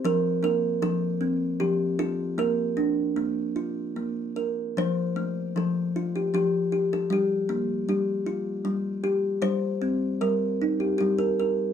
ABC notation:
X:1
M:3/4
L:1/16
Q:1/4=77
K:Fmix
V:1 name="Kalimba"
B2 B2 A4 G2 A2 | B8 z4 | c4 A3 G G3 A | G4 G4 z4 |
c4 B3 G G B3 |]
V:2 name="Kalimba"
F,2 B,2 F,2 C2 F,2 F2 | B,2 D2 B,2 F2 B,2 B2 | F,2 A,2 F,2 F2 F,2 G2 | G,2 B,2 G,2 F2 G,2 G2 |
G,2 C2 G,2 E2 G,2 B2 |]